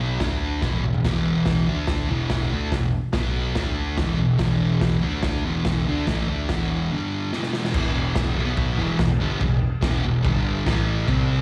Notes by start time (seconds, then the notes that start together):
Already playing: B1 B2 F#3 B3
0.19 D2 D3 A3 D4, kick, snare, open hi-hat
0.62 E1 E2 B2 E3, kick, snare
0.73 high tom
0.83 E1 E2 B2, mid tom
0.94 floor tom
1.04 E1 E2 B2 E3, kick, snare, open hi-hat, splash
1.46 kick, snare, open hi-hat
1.67 D2 D3 A3 D4
1.87 kick, snare, open hi-hat
2.08 E1 E2 B2 E3
2.30 kick, snare, open hi-hat
2.51 D2 D3 A3 D4
2.71 E1 E2 B2, kick, snare, open hi-hat
3.13 B1 B2 F#3 B3, kick, snare, open hi-hat
3.55 D2 D3 A3 D4, kick, snare, open hi-hat
3.98 E1 E2 B2 E3, kick, snare, open hi-hat
4.17 E1 E2 B2
4.38 E1 E2 B2 E3, kick, snare, open hi-hat
4.81 kick, snare, open hi-hat
5.03 D2 D3 A3 D4
5.23 kick, snare, open hi-hat
5.45 E1 E2 B2 E3
5.65 kick, snare, open hi-hat
5.86 D2 D3 A3 D4
6.06 A1 A2 E3 A3, kick, snare, open hi-hat
6.27 D2 D3 A3 D4
6.49 E1 E2 B2 E3, kick, snare, open hi-hat
6.92 G2 D3 G3
7.33 E2 B2 E3, snare
7.43 snare
7.53 snare
7.65 snare
7.74 E1 E2 B2 E3, kick, crash
8.15 kick, snare, crash
8.36 B1 B2 F#3 B3
8.57 kick, crash
8.78 E1 E2 B2 E3
8.98 E1 E2 B2, kick, snare, crash
9.20 G1 G2 D3 G3
9.40 E1 E2 B2, kick, crash
9.81 E1 E2 B2 E3, kick, snare, crash
10.04 E1 E2 B2
10.23 G1 G2 D3 G3, kick, crash
10.65 A1 A2 E3 A3, kick, snare, crash
11.08 C2 C3 G3 C4, kick, crash